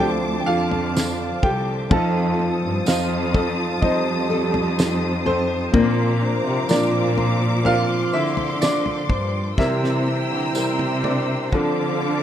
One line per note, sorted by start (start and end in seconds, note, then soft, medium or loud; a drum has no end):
0.00 0.43 D2 loud
0.00 1.40 D3 medium
0.00 1.91 D3 medium
0.00 1.93 D3 medium
0.00 1.90 F3 medium
0.00 1.90 C4 medium
0.00 2.05 C4 medium
0.00 1.40 D4 medium
0.00 1.93 D4 medium
0.00 0.95 F4 medium
0.00 0.11 G4 medium
0.00 0.47 A4 medium
0.00 1.91 A4 medium
0.00 1.88 C5 medium
0.00 1.88 A5 medium
0.00 1.88 D6 medium
0.40 0.47 G5 medium
0.46 1.39 F2 loud
0.46 1.40 F4 medium
0.46 1.43 A4 medium
0.46 1.46 F5 loud
0.71 floor tom medium
0.95 2.86 F4 medium
0.95 snare loud
0.95 tambourine loud
1.43 1.88 C2 medium
1.43 1.89 G4 medium
1.43 2.90 A4 medium
1.43 1.92 G5 loud
1.43 kick loud
1.43 floor tom medium
1.90 2.59 F2 loud
1.90 2.81 F3 medium
1.90 3.32 F3 medium
1.90 5.74 F3 medium
1.90 2.82 C4 medium
1.90 2.82 D#4 medium
1.90 3.32 F4 medium
1.90 2.82 A4 medium
1.90 2.84 A4 medium
1.90 9.54 C5 medium
1.90 5.70 A5 medium
1.90 2.90 A5 medium
1.90 5.70 D#6 medium
1.90 kick loud
1.90 floor tom loud
2.39 5.89 C4 medium
2.62 2.85 G2 medium
2.86 3.78 F2 loud
2.86 3.77 F3 medium
2.86 3.78 C4 medium
2.86 3.82 D#4 medium
2.86 3.78 D#4 medium
2.86 3.80 F4 medium
2.86 3.78 C5 medium
2.86 3.79 F5 medium
2.86 snare loud
2.86 tambourine medium
3.34 4.29 A4 medium
3.34 kick loud
3.34 floor tom medium
3.81 5.70 F2 loud
3.81 5.64 F3 medium
3.81 5.23 G3 medium
3.81 5.65 C4 medium
3.81 4.77 D#4 medium
3.81 5.65 D#4 medium
3.81 4.75 D#4 medium
3.81 5.23 G4 loud
3.81 5.65 C5 medium
3.81 4.74 D#5 medium
3.81 kick medium
3.81 floor tom medium
4.30 5.25 A4 medium
4.54 floor tom medium
4.79 5.83 D#4 medium
4.79 snare loud
4.79 tambourine loud
5.26 6.66 C4 medium
5.26 5.83 A4 medium
5.26 6.66 C5 loud
5.26 floor tom medium
5.72 7.13 A#2 medium
5.72 6.41 A#2 loud
5.72 6.64 F3 medium
5.72 9.06 F3 medium
5.72 9.58 A#3 loud
5.72 6.64 C4 medium
5.72 6.65 D4 medium
5.72 9.06 F4 medium
5.72 6.65 A#4 medium
5.72 7.63 A#5 medium
5.72 9.54 D6 medium
5.72 kick loud
5.72 floor tom loud
6.21 9.68 D4 medium
6.44 6.67 C3 loud
6.68 8.09 A#2 loud
6.68 7.60 F3 medium
6.68 7.60 C4 medium
6.68 7.60 D4 medium
6.68 7.65 F4 medium
6.68 7.61 A#4 medium
6.68 7.62 D5 medium
6.68 snare loud
6.68 tambourine medium
6.72 7.63 D4 medium
7.17 8.12 C5 medium
7.17 floor tom medium
7.63 9.48 F3 medium
7.63 9.48 C4 medium
7.63 9.48 D4 medium
7.63 8.11 F4 medium
7.63 9.48 A#4 medium
7.63 8.15 F5 loud
7.63 9.57 C6 medium
7.63 floor tom medium
8.13 9.06 D3 loud
8.13 8.59 E4 medium
8.13 9.09 C5 medium
8.13 8.63 E5 loud
8.37 floor tom medium
8.61 9.55 D4 medium
8.61 9.68 F4 medium
8.61 9.61 D5 loud
8.61 snare loud
8.61 tambourine medium
8.86 floor tom medium
9.10 9.55 G2 medium
9.10 11.03 C5 medium
9.10 kick loud
9.10 floor tom medium
9.57 10.27 C3 loud
9.57 11.62 C3 medium
9.57 11.00 C3 medium
9.57 11.01 E3 medium
9.57 10.50 G3 medium
9.57 10.50 C4 medium
9.57 11.01 E4 medium
9.57 10.51 E4 medium
9.57 11.01 E4 medium
9.57 10.51 A#4 medium
9.57 12.23 C5 medium
9.57 11.00 E5 loud
9.57 11.51 G5 medium
9.57 11.51 A#5 medium
9.57 11.51 E6 medium
9.57 kick loud
9.57 snare medium
9.84 snare medium
10.06 12.23 C4 medium
10.30 10.53 D3 medium
10.54 11.48 C3 loud
10.54 11.47 G3 medium
10.54 11.47 C4 medium
10.54 11.62 E4 medium
10.54 11.48 E4 medium
10.54 11.48 A#4 medium
10.54 tambourine medium
10.79 high tom medium
11.04 12.23 D4 medium
11.04 11.62 A#4 medium
11.04 12.23 D5 medium
11.04 high tom medium
11.52 12.23 D3 medium
11.52 12.23 D3 loud
11.52 12.23 D3 medium
11.52 12.23 F3 medium
11.52 12.23 C4 medium
11.52 12.23 D4 medium
11.52 12.23 A4 medium
11.52 12.23 F5 medium
11.52 12.23 A5 medium
11.52 12.23 D6 medium
11.52 kick medium
12.02 12.23 A4 medium